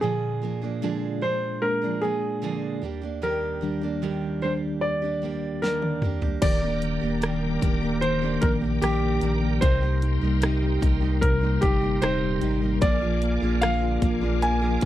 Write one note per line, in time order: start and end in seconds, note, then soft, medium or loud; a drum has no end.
0.01 0.42 A#2 medium
0.01 2.78 A#2 medium
0.01 0.42 D3 medium
0.01 0.40 F3 medium
0.01 0.42 A#3 medium
0.01 0.42 D4 medium
0.01 1.25 G#4 medium
0.01 0.43 G#4 medium
0.42 0.62 F3 soft
0.42 0.63 A#3 soft
0.42 0.62 D4 medium
0.42 0.60 G#4 soft
0.62 0.82 F3 soft
0.62 0.82 A#3 soft
0.62 0.83 D4 soft
0.62 0.82 G#4 soft
0.82 1.22 A#2 medium
0.82 1.22 D3 medium
0.82 1.20 F3 medium
0.82 1.60 G#3 soft
0.82 1.60 A#3 soft
0.82 1.22 A#3 medium
0.82 1.60 D4 soft
0.82 1.22 D4 medium
0.82 1.23 G#4 medium
1.21 1.82 F3 soft
1.21 1.83 A#3 soft
1.21 1.82 D4 soft
1.21 1.80 G#4 soft
1.21 1.63 C5 medium
1.62 2.40 G#3 soft
1.62 2.40 A#3 soft
1.62 2.40 D4 soft
1.62 2.03 A#4 medium
1.82 2.00 F3 soft
1.82 2.02 A#3 soft
1.82 2.03 D4 soft
1.82 2.02 G#4 soft
2.02 2.42 F3 soft
2.02 2.42 A#3 soft
2.02 2.42 D4 soft
2.02 2.78 G#4 medium
2.02 2.43 G#4 soft
2.42 2.82 A#2 medium
2.42 2.82 D3 medium
2.42 2.81 F3 medium
2.42 2.82 A#3 medium
2.42 2.83 D4 medium
2.42 2.83 G#4 medium
2.82 5.98 D#2 medium
2.82 3.02 G3 soft
2.82 3.03 A#3 soft
2.82 3.02 D4 soft
2.82 3.00 G4 soft
3.02 3.21 A#3 soft
3.02 3.22 D4 soft
3.02 3.22 G4 soft
3.22 3.62 D#3 medium
3.22 3.60 G3 medium
3.22 3.61 A#3 medium
3.22 3.62 D4 medium
3.22 3.63 G4 medium
3.22 4.46 A#4 medium
3.61 4.40 D#3 soft
3.61 3.82 G3 soft
3.61 4.40 G3 soft
3.61 3.82 A#3 soft
3.61 4.40 D4 soft
3.61 3.82 D4 soft
3.61 3.80 G4 soft
3.81 4.02 A#3 soft
3.81 4.02 D4 soft
3.81 4.02 G4 soft
4.02 4.42 D#3 medium
4.02 4.41 G3 medium
4.02 4.42 A#3 medium
4.02 4.43 D4 medium
4.02 4.43 G4 medium
4.42 5.20 D#3 soft
4.42 5.02 G3 soft
4.42 5.20 G3 soft
4.42 5.03 A#3 soft
4.42 5.21 D4 soft
4.42 5.03 D4 soft
4.42 5.01 G4 soft
4.42 4.51 C5 medium
4.81 5.98 D5 medium
5.02 5.22 A#3 soft
5.02 5.23 D4 soft
5.02 5.22 G4 soft
5.22 5.61 G3 soft
5.22 5.62 A#3 soft
5.22 5.63 D4 soft
5.22 5.63 G4 soft
5.62 6.02 D#3 medium
5.62 6.01 G3 medium
5.62 6.02 A#3 medium
5.62 6.03 D4 medium
5.62 6.03 G4 medium
5.62 6.45 A#4 medium
5.62 snare soft
5.82 high tom soft
6.02 6.41 D#2 medium
6.02 6.22 G3 soft
6.02 6.23 A#3 soft
6.02 6.22 D4 medium
6.02 6.20 G4 medium
6.02 mid tom medium
6.21 6.42 A#3 soft
6.21 6.43 D4 soft
6.21 6.42 G4 soft
6.21 floor tom medium
6.42 6.98 D#1 medium
6.42 6.62 D#3 medium
6.42 6.82 D#3 medium
6.42 6.62 G3 medium
6.42 6.63 A#3 medium
6.42 6.62 D4 medium
6.42 6.61 G4 medium
6.42 14.85 A#4 medium
6.42 8.07 D5 medium
6.42 12.79 G5 soft
6.42 12.79 A#5 medium
6.42 9.59 D6 soft
6.42 kick medium
6.42 closed hi-hat medium
6.42 crash medium
6.62 7.02 A#3 soft
6.62 7.03 A#3 soft
6.62 7.02 D4 soft
6.62 7.00 G4 soft
6.82 7.22 D#3 soft
6.82 closed hi-hat medium
7.01 7.58 D#1 medium
7.01 7.42 A#3 soft
7.01 7.21 A#3 soft
7.01 7.22 D4 soft
7.01 7.22 G4 soft
7.21 7.62 D#3 medium
7.21 7.62 D#3 soft
7.21 7.60 G3 medium
7.21 7.61 A#3 medium
7.21 7.62 D4 medium
7.21 7.63 G4 medium
7.21 cross-stick medium
7.21 closed hi-hat medium
7.43 7.82 A#3 soft
7.61 8.38 D#1 medium
7.61 8.01 D#3 soft
7.61 7.82 G3 soft
7.61 7.82 A#3 medium
7.61 7.82 D4 medium
7.61 7.80 G4 medium
7.61 kick medium
7.61 closed hi-hat medium
7.81 8.22 A#3 soft
7.81 8.23 A#3 soft
7.81 8.22 D4 soft
7.81 8.20 G4 soft
8.01 8.41 D#3 medium
8.01 8.43 C5 medium
8.01 closed hi-hat medium
8.22 8.61 A#3 soft
8.22 8.42 A#3 soft
8.22 8.43 D4 soft
8.22 8.42 G4 soft
8.41 8.80 A#1 medium
8.41 8.82 D#3 soft
8.41 8.62 G3 soft
8.41 8.63 A#3 soft
8.41 8.62 D4 soft
8.41 8.60 G4 medium
8.41 8.50 A#4 medium
8.41 kick medium
8.41 closed hi-hat medium
8.62 9.02 A#3 soft
8.62 8.82 A#3 soft
8.62 8.82 D4 soft
8.62 8.82 G4 soft
8.82 9.20 A#1 medium
8.82 9.22 D#3 medium
8.82 9.21 D#3 soft
8.82 9.20 G3 medium
8.82 9.21 A#3 medium
8.82 9.22 D4 medium
8.82 9.64 G4 medium
8.82 9.23 G4 medium
8.82 cross-stick medium
8.82 closed hi-hat medium
9.03 9.42 A#3 soft
9.21 9.59 A#1 medium
9.21 9.61 D#3 soft
9.21 9.61 G3 soft
9.21 9.61 A#3 soft
9.21 9.63 D4 soft
9.21 9.62 G4 medium
9.21 closed hi-hat medium
9.43 9.62 A#3 soft
9.61 10.18 C2 loud
9.61 9.82 C3 medium
9.61 11.22 C3 medium
9.61 9.82 G3 medium
9.61 9.82 A#3 medium
9.61 9.82 D#4 medium
9.61 9.80 G4 medium
9.61 11.18 C5 medium
9.61 12.80 C6 soft
9.61 kick medium
9.61 closed hi-hat medium
9.81 10.22 G3 soft
9.81 10.23 A#3 soft
9.81 10.22 D#4 soft
9.81 10.20 G4 soft
10.02 10.41 D#4 soft
10.02 closed hi-hat medium
10.21 10.78 C2 medium
10.21 10.62 G3 soft
10.21 10.41 A#3 soft
10.21 10.42 D#4 soft
10.21 10.42 G4 soft
10.41 10.82 C3 medium
10.41 10.80 G3 medium
10.41 10.81 A#3 medium
10.41 10.81 D#4 soft
10.41 10.82 D#4 medium
10.41 10.83 G4 medium
10.41 cross-stick medium
10.41 closed hi-hat medium
10.63 11.01 G3 soft
10.81 11.58 C2 medium
10.81 11.02 G3 medium
10.81 11.02 A#3 medium
10.81 11.61 D#4 soft
10.81 11.01 D#4 medium
10.81 11.00 G4 medium
10.81 kick medium
10.81 closed hi-hat medium
11.01 11.41 G3 soft
11.01 11.43 A#3 soft
11.01 11.42 D#4 soft
11.01 11.40 G4 soft
11.21 12.79 C3 medium
11.21 11.63 A#4 medium
11.21 kick medium
11.21 closed hi-hat medium
11.41 11.81 G3 soft
11.41 11.61 A#3 soft
11.41 11.62 D#4 soft
11.41 11.62 G4 soft
11.61 12.00 G1 medium
11.61 11.82 G3 soft
11.61 11.82 A#3 medium
11.61 12.01 D#4 soft
11.61 11.82 D#4 medium
11.61 12.03 G4 medium
11.61 11.80 G4 medium
11.61 kick medium
11.61 closed hi-hat medium
11.81 12.22 G3 soft
11.81 12.01 A#3 soft
11.81 12.02 D#4 soft
11.81 12.02 G4 soft
12.02 12.39 D#1 loud
12.02 12.42 C3 medium
12.02 12.40 G3 medium
12.02 12.41 A#3 medium
12.02 12.41 D#4 soft
12.02 12.42 D#4 medium
12.02 12.43 G4 medium
12.02 12.84 C5 medium
12.02 cross-stick medium
12.02 closed hi-hat medium
12.23 12.62 G3 soft
12.41 12.79 G#1 medium
12.41 12.62 G3 medium
12.41 12.62 A#3 medium
12.41 12.81 D#4 medium
12.41 12.62 D#4 medium
12.41 12.60 G4 medium
12.41 closed hi-hat medium
12.62 12.82 G3 medium
12.62 12.82 A#3 soft
12.62 12.83 D#4 soft
12.62 12.82 G4 soft
12.81 13.38 A#1 loud
12.81 13.02 A#2 medium
12.81 13.02 D3 medium
12.81 13.02 F3 medium
12.81 13.22 A#3 medium
12.81 13.02 A#3 medium
12.81 13.01 D4 medium
12.81 13.00 G#4 medium
12.81 13.64 D5 medium
12.81 14.85 F5 soft
12.81 14.85 G#5 medium
12.81 14.85 D6 medium
12.81 kick loud
12.81 closed hi-hat medium
13.01 13.43 F3 soft
13.01 13.42 A#3 soft
13.01 13.42 D4 soft
13.01 13.41 F4 soft
13.01 13.40 G#4 medium
13.22 13.61 A#3 soft
13.22 closed hi-hat medium
13.41 13.98 A#1 medium
13.41 13.62 F3 soft
13.41 13.62 A#3 soft
13.41 13.62 D4 soft
13.41 13.82 F4 soft
13.41 13.62 G#4 soft
13.61 14.02 A#2 medium
13.61 14.02 D3 medium
13.61 14.00 F3 medium
13.61 14.01 A#3 medium
13.61 14.02 A#3 medium
13.61 14.03 D4 medium
13.61 14.03 G#4 medium
13.61 14.44 F5 medium
13.61 cross-stick medium
13.61 closed hi-hat medium
13.83 14.21 F4 medium
14.02 14.78 A#1 medium
14.02 14.22 F3 soft
14.02 14.41 A#3 medium
14.02 14.22 A#3 soft
14.02 14.21 D4 medium
14.02 14.20 G#4 medium
14.02 kick medium
14.02 closed hi-hat medium
14.21 14.63 F3 soft
14.21 14.63 A#3 soft
14.21 14.61 D4 soft
14.21 14.62 F4 soft
14.21 14.60 G#4 soft
14.42 14.82 A#3 medium
14.42 14.85 G#5 medium
14.42 closed hi-hat medium
14.61 14.80 F3 soft
14.61 14.82 A#3 soft
14.61 14.82 D4 soft
14.61 14.85 F4 soft
14.61 14.82 G#4 soft
14.81 14.85 F1 medium
14.81 14.85 F3 medium
14.81 closed hi-hat medium